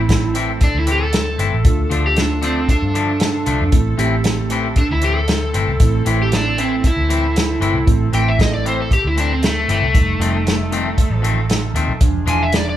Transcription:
Already playing: fingered electric bass A1, horn section E3 A3 C4 E4 A4, tine electric piano A3 C4 E4, electric slide guitar E4
0.09 kick, snare, closed hi-hat
0.34 clean electric guitar A2 E3 C4 E4, closed hi-hat
0.61 electric slide guitar D4, kick, closed hi-hat
0.75 fingered electric bass D2, electric slide guitar E4
0.86 clean electric guitar A2 E3 C4 E4, closed hi-hat
0.91 electric slide guitar G4
1.04 electric slide guitar A4
1.13 snare, closed hi-hat
1.38 fingered electric bass G1, clean electric guitar A2 E3 C4 E4, closed hi-hat
1.52 fingered electric bass A1
1.63 fingered electric bass D2, horn section F3 D4 F4, tine electric piano A3 D4 F4, kick, closed hi-hat
1.90 fingered electric bass D2, clean electric guitar D3 F3 A3 D4, tine electric piano A3 D4 F4, closed hi-hat
2.06 electric slide guitar G4
2.16 electric slide guitar D4, snare, closed hi-hat
2.42 clean electric guitar D3 F3 A3 D4, electric slide guitar C4, closed hi-hat
2.69 electric slide guitar D4, kick, closed hi-hat
2.82 fingered electric bass G2
2.94 clean electric guitar D3 F3 A3 D4, closed hi-hat
3.20 snare, closed hi-hat
3.46 fingered electric bass C2, clean electric guitar D3 F3 A3 D4, closed hi-hat
3.61 fingered electric bass F2
3.71 fingered electric bass A1, horn section E3 C4 E4, tine electric piano A3 C4 E4, kick, closed hi-hat
3.98 fingered electric bass A1, clean electric guitar A2 E3 C4 E4, tine electric piano A3 C4 G4, closed hi-hat
4.24 snare, closed hi-hat
4.50 clean electric guitar A2 E3 C4 E4, closed hi-hat
4.76 electric slide guitar D4, kick, closed hi-hat
4.91 fingered electric bass D2, electric slide guitar E4
5.01 clean electric guitar A2 E3 C4 E4, electric slide guitar G4, closed hi-hat
5.18 electric slide guitar A4
5.28 snare, closed hi-hat
5.54 fingered electric bass G1, clean electric guitar A2 E3 C4 E4, closed hi-hat
5.67 fingered electric bass C2
5.80 fingered electric bass A1, tine electric piano A3 C4 E4, kick, closed hi-hat
6.05 fingered electric bass A1, clean electric guitar A2 E3 C4 E4, tine electric piano A3 C4 E4, closed hi-hat
6.22 electric slide guitar G4
6.32 electric slide guitar D4, snare, closed hi-hat
6.57 clean electric guitar A2 E3 C4 E4, electric slide guitar C4, closed hi-hat
6.84 electric slide guitar E4, kick, closed hi-hat
6.96 fingered electric bass D2
7.09 clean electric guitar A2 E3 C4 E4, closed hi-hat
7.36 snare, closed hi-hat
7.60 fingered electric bass G1, clean electric guitar A2 E3 C4 E4, closed hi-hat
7.74 fingered electric bass C2
7.86 fingered electric bass A1, tine electric piano A3 C4 E4, kick, closed hi-hat
8.12 fingered electric bass A1, clean electric guitar A2 E3 C4 E4, tine electric piano A3 C4, electric slide guitar G5, closed hi-hat
8.28 electric slide guitar E5
8.39 electric slide guitar D#5, kick, snare, closed hi-hat
8.54 electric slide guitar D5
8.65 clean electric guitar A2 E3 C4 E4, electric slide guitar C5, closed hi-hat
8.82 electric slide guitar A4
8.91 electric slide guitar G4, kick, closed hi-hat
9.05 fingered electric bass D2, electric slide guitar E4
9.16 clean electric guitar A2 E3 C4 E4, electric slide guitar D4, closed hi-hat
9.33 electric slide guitar C4
9.43 electric slide guitar A3, snare, closed hi-hat
9.68 fingered electric bass G1, clean electric guitar A2 E3 C4 E4, electric slide guitar A3, closed hi-hat
9.82 fingered electric bass C2
9.94 fingered electric bass F1, tine electric piano G3 A3 D#4, horn section A3 D#4 F4 A4, kick, closed hi-hat
10.19 fingered electric bass F1, clean electric guitar F2 D#3 A3 C4, tine electric piano G3 A3 D#4, closed hi-hat
10.47 snare, closed hi-hat
10.71 clean electric guitar F2 D#3 A3 C4, closed hi-hat
10.98 kick, closed hi-hat
11.10 fingered electric bass A1
11.22 clean electric guitar F2 D#3 A3 C4, closed hi-hat
11.49 snare, closed hi-hat
11.74 fingered electric bass D#2, clean electric guitar F2 D#3 A3 C4, closed hi-hat
11.88 fingered electric bass B1
12.00 fingered electric bass E1, tine electric piano F3 G#3 D4, horn section G#3 D4 G#4, kick, closed hi-hat
12.25 fingered electric bass E1, clean electric guitar E3 G#3 D4 F4, tine electric piano F3 G#3 D4, electric slide guitar G#5, closed hi-hat
12.43 electric slide guitar E5
12.52 electric slide guitar D5, snare, closed hi-hat
12.69 electric slide guitar D5

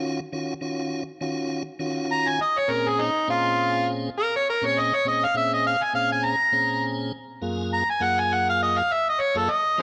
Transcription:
Already playing: tonewheel organ D#3 C#4 F4 F#4
0.33 tonewheel organ D#3 C#4 F4 F#4
0.61 tonewheel organ D#3 C#4 F4 F#4
1.21 tonewheel organ D#3 C#4 F4 F#4
1.79 tonewheel organ D#3 C#4 F4 F#4
2.12 harmonica A#5
2.28 harmonica G#5
2.41 harmonica D#5
2.58 harmonica C#5
2.68 tonewheel organ A#2 C4 C#4 G#4, harmonica A#4
2.88 harmonica G#4
3.01 harmonica D#4
3.27 tonewheel organ A#2 C4 C#4 G#4, harmonica F4
4.18 harmonica A#4
4.36 harmonica C#5
4.49 harmonica A#4
4.62 tonewheel organ A#2 C4 C#4 G#4, harmonica C#5
4.79 harmonica D#5
4.95 harmonica C#5
5.05 tonewheel organ A#2 C4 C#4 G#4, harmonica D#5
5.24 harmonica F5
5.34 tonewheel organ A#2 C4 C#4 G#4, harmonica E5
5.54 harmonica D#5
5.66 harmonica F5
5.82 harmonica G#5
5.93 tonewheel organ A#2 C4 C#4 G#4, harmonica F5
6.12 harmonica G#5
6.25 harmonica A#5
6.52 tonewheel organ A#2 C4 C#4 G#4
7.41 tonewheel organ F#2 A#3 F4 G#4
7.74 harmonica A#5
7.90 harmonica G#5
8.00 tonewheel organ F#2 A#3 F4 G#4, harmonica F#5
8.19 harmonica G#5
8.33 harmonica F#5
8.50 harmonica F5
8.63 harmonica D#5
8.78 harmonica F5
8.93 harmonica E5
9.09 harmonica D#5
9.21 harmonica C#5
9.34 tonewheel organ F#2 A#3 F4 G#4, harmonica A4
9.50 harmonica D#5
9.78 tonewheel organ F3 C4 D#4

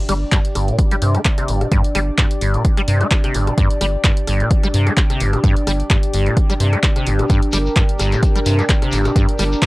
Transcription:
Already playing: analog synth pad D4 G4 D5
0.09 analog synth bass G1, acid bass G3, cross-stick, open hi-hat
0.32 acid bass G2, kick, cross-stick, clap, closed hi-hat
0.45 closed hi-hat
0.55 analog synth bass G1, acid bass G2, cross-stick, open hi-hat
0.68 acid bass A#2, closed hi-hat
0.79 kick, closed hi-hat
0.91 acid bass G3, cross-stick, closed hi-hat
1.02 analog synth bass G2, acid bass C3, open hi-hat
1.15 acid bass A#3, cross-stick, closed hi-hat
1.25 kick, clap, closed hi-hat
1.38 acid bass C3, cross-stick, closed hi-hat
1.48 analog synth bass G1, acid bass G2, open hi-hat
1.61 acid bass C3, cross-stick, closed hi-hat
1.72 acid bass G2, kick, closed hi-hat
1.84 closed hi-hat
1.95 analog synth bass G1, acid bass G3, cross-stick, open hi-hat
2.18 acid bass G2, kick, cross-stick, clap, closed hi-hat
2.31 closed hi-hat
2.41 analog synth bass G1, acid bass G2, open hi-hat
2.54 acid bass A#2, closed hi-hat
2.65 kick, closed hi-hat
2.77 acid bass G3, cross-stick, closed hi-hat
2.88 analog synth bass G2, acid bass C3, open hi-hat
3.01 acid bass A#3, cross-stick, closed hi-hat
3.11 kick, clap, closed hi-hat
3.24 acid bass C3, cross-stick, closed hi-hat
3.34 analog synth bass G1, acid bass G2, open hi-hat
3.47 acid bass C3, cross-stick, closed hi-hat
3.58 acid bass G2, kick, closed hi-hat
3.71 closed hi-hat
3.81 analog synth bass G1, acid bass G3, cross-stick, open hi-hat
4.04 acid bass G2, kick, cross-stick, clap, closed hi-hat
4.17 closed hi-hat
4.27 analog synth bass G1, acid bass G2, cross-stick, open hi-hat
4.40 acid bass A#2, closed hi-hat
4.51 kick, closed hi-hat
4.63 acid bass G3, cross-stick, closed hi-hat
4.74 analog synth bass G2, acid bass C3, open hi-hat
4.87 acid bass A#3, cross-stick, closed hi-hat
4.97 kick, clap, closed hi-hat
5.10 acid bass C3, cross-stick, closed hi-hat
5.20 analog synth bass G1, acid bass G2, open hi-hat
5.33 acid bass C3, cross-stick, closed hi-hat
5.44 acid bass G2, kick, closed hi-hat
5.57 closed hi-hat
5.67 analog synth bass G1, acid bass G3, cross-stick, open hi-hat
5.80 closed hi-hat
5.90 acid bass G2, kick, cross-stick, clap, closed hi-hat
6.03 closed hi-hat
6.13 analog synth bass G1, acid bass G2, open hi-hat
6.26 acid bass A#2, closed hi-hat
6.37 kick, closed hi-hat
6.50 acid bass G3, cross-stick, closed hi-hat
6.60 analog synth bass G2, acid bass C3, open hi-hat
6.73 acid bass A#3, cross-stick, closed hi-hat
6.83 kick, clap, closed hi-hat
6.96 acid bass C3, cross-stick, closed hi-hat
7.07 analog synth bass G1, acid bass G2, open hi-hat
7.19 acid bass C3, cross-stick, closed hi-hat
7.29 acid bass G2, analog synth pad A#4, kick, closed hi-hat, shekere
7.42 closed hi-hat
7.52 analog synth bass G1, acid bass G3, cross-stick, open hi-hat, shekere
7.66 shekere
7.76 acid bass G2, kick, cross-stick, clap, closed hi-hat, shekere
7.89 closed hi-hat
7.99 analog synth bass G1, acid bass G2, cross-stick, open hi-hat, shekere
8.12 acid bass A#2, closed hi-hat, shekere
8.23 kick, closed hi-hat, shekere
8.35 acid bass G3, cross-stick, closed hi-hat
8.46 analog synth bass G2, acid bass C3, open hi-hat, shekere
8.59 acid bass A#3, cross-stick, closed hi-hat, shekere
8.69 kick, clap, closed hi-hat, shekere
8.82 acid bass C3, cross-stick, closed hi-hat
8.92 analog synth bass G1, acid bass G2, open hi-hat, shekere
9.05 acid bass C3, cross-stick, closed hi-hat, shekere
9.16 acid bass G2, kick, closed hi-hat, shekere
9.29 closed hi-hat
9.39 analog synth bass G1, acid bass G3, cross-stick, open hi-hat, shekere
9.52 shekere
9.62 acid bass G2, kick, cross-stick, clap, closed hi-hat

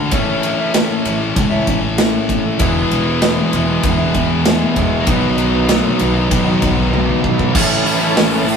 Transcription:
Already playing: distorted electric guitar A3 D4 F#4, clean electric guitar D4
0.00 clean electric guitar A3
0.11 upright bass A1, clean electric guitar A2 E3 A3 C#4 E4, distorted electric guitar A2 E3 A3 C#4, kick, ride
0.15 distorted electric guitar E4
0.43 ride
0.57 clean electric guitar A3 C#4 E4
0.72 clean electric guitar A2 E3 A3 C#4 E4, snare, ride
1.03 upright bass A1, clean electric guitar E3 A3 C#4 E4, ride
1.20 muted clean electric guitar stroke
1.36 upright bass C#2, kick, ride
1.49 clean electric guitar A3 C#4 E4
1.65 upright bass A1, clean electric guitar E3 A3 C#4 E4, kick, ride
1.82 muted clean electric guitar stroke
1.96 clean electric guitar A2 E3 A3 C#4 E4, snare, ride
2.29 upright bass A2, kick, ride
2.43 clean electric guitar A3 C#4 E4
2.58 upright bass E1, distorted electric guitar E2 B2 E3 G#3 B3 E4, clean electric guitar E2 B2 E3 G#3 B3 E4, kick, ride
2.90 upright bass E1, ride
3.05 clean electric guitar E3 G#3 B3 E4
3.21 clean electric guitar E2 B2 E3 G#3 B3 E4, snare, ride
3.51 upright bass E1, clean electric guitar E3 G#3 B3 E4, ride
3.67 muted clean electric guitar stroke
3.83 upright bass E1, kick, ride
3.98 clean electric guitar E3 G#3 B3 E4
4.12 upright bass E2, clean electric guitar E3 G#3 B3 E4, kick, ride
4.29 muted clean electric guitar stroke
4.44 clean electric guitar E2 B2 E3 G#3 B3 E4, snare, ride
4.76 upright bass E1, distorted electric guitar E2 B2 E3, kick, ride
4.90 clean electric guitar E3 G#3 B3 E4
5.06 upright bass B1, clean electric guitar B2 F#3 B3 D#4 F#4, distorted electric guitar B2 D#3 F#3 B3 D#4, kick, ride
5.38 ride
5.52 clean electric guitar B3 D#4 F#4
5.67 clean electric guitar B2 F#3 B3 D#4 F#4, snare, ride
5.98 upright bass B1, clean electric guitar F#3 B3 D#4 F#4, ride
6.14 muted clean electric guitar stroke
6.31 upright bass D#2, kick, ride
6.44 clean electric guitar B3 D#4 F#4
6.60 upright bass B1, clean electric guitar F#3 B3 D#4 F#4, kick, ride
6.76 muted clean electric guitar stroke
6.90 clean electric guitar B2 F#3 B3 D#4 F#4, high tom
7.21 upright bass B1, distorted electric guitar B2 F#3 B3, kick
7.37 clean electric guitar B3 D#4 F#4, kick
7.54 upright bass A1, distorted electric guitar A2 E3 A3 C#4 E4, tonewheel organ E4 A4 C#5 A5, kick, crash
7.85 distorted electric guitar E3 A3 C#4 E4, open hi-hat
8.01 distorted electric guitar A3 C#4 E4
8.16 distorted electric guitar A2 E3 A3 C#4 E4, snare, open hi-hat
8.30 distorted electric guitar A3 C#4 E4
8.48 muted distorted electric guitar stroke, open hi-hat

